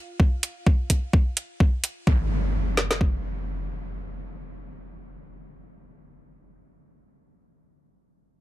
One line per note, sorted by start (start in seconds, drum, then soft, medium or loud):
0.20 kick loud
0.43 closed hi-hat medium
0.67 kick loud
0.90 kick medium
0.90 closed hi-hat medium
1.13 kick loud
1.37 closed hi-hat medium
1.60 kick loud
1.84 closed hi-hat medium
2.07 kick loud
2.07 impact medium
2.77 snare medium
2.91 snare medium
3.01 kick medium